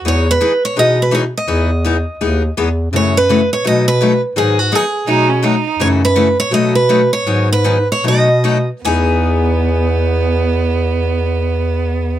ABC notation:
X:1
M:4/4
L:1/16
Q:"Swing" 1/4=167
K:E
V:1 name="Steel-string acoustic guitar"
c2 B4 c2 d2 B2 c2 d2- | d12 z4 | c2 B4 c2 d2 B4 z2 | G2 F2 G8 z4 |
c2 B4 c2 d2 B4 c2- | c2 B4 c2 d6 z2 | g16- | g16 |]
V:2 name="Violin"
z16 | z16 | z16 | z8 D2 C2 D3 z |
z16 | z16 | B,16- | B,16 |]
V:3 name="Steel-string acoustic guitar"
[E,B,DG]2 z2 [E,B,DG] z3 [E,B,DG]2 z2 [E,B,DG] z3 | [E,B,DG]2 z2 [E,B,DG] z3 [E,B,DG]2 z2 [E,B,DG] z3 | [C,E,A,CF]2 z2 [C,E,A,CF] z3 [B,,F,A,DF]2 z2 [B,,F,A,DF] z3 | [D,F,B,DG]2 z2 [D,F,B,DG] z3 [B,,F,A,DF]2 z2 [B,,F,A,DF] z3 |
[C,E,A,CF]2 z2 [C,E,A,CF] z3 [B,,F,A,DF]2 z2 [B,,F,A,DF] z3 | [D,F,B,DG]2 z2 [D,F,B,DG] z3 [B,,F,A,DF]2 z2 [B,,F,A,DF] z3 | [E,B,DG]16- | [E,B,DG]16 |]
V:4 name="Bass clarinet" clef=bass
E,,4- E,, z3 B,,8 | E,,8 D,,4 E,,4 | F,,8 B,,8 | G,,4- G,, z3 B,,8 |
F,,8 B,,8 | G,,8 B,,8 | E,,16- | E,,16 |]